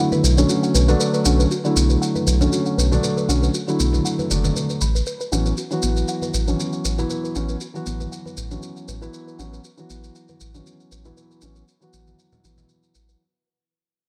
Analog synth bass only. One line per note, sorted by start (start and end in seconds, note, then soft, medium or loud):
0.24 0.44 B1 loud
0.75 0.95 B1 loud
1.26 1.46 B1 loud
1.76 1.97 B1 medium
2.27 2.48 B1 loud
2.78 2.98 B1 medium
3.29 3.49 B1 loud
3.80 4.00 B1 medium
4.31 4.51 F#1 medium
4.81 5.02 A1 loud
5.32 5.53 A1 loud
5.83 6.04 A1 medium
6.34 6.54 A1 loud
6.85 7.05 A1 loud
7.36 7.56 A1 loud
7.86 8.07 A1 medium
8.37 8.58 A1 loud
8.88 9.09 A1 medium
9.39 9.59 A1 loud
9.90 10.10 A1 medium
10.41 10.61 A1 loud
10.92 11.12 A1 medium
11.43 11.63 A1 loud
11.93 12.14 A1 medium
12.44 12.65 A1 medium
12.95 13.15 A1 loud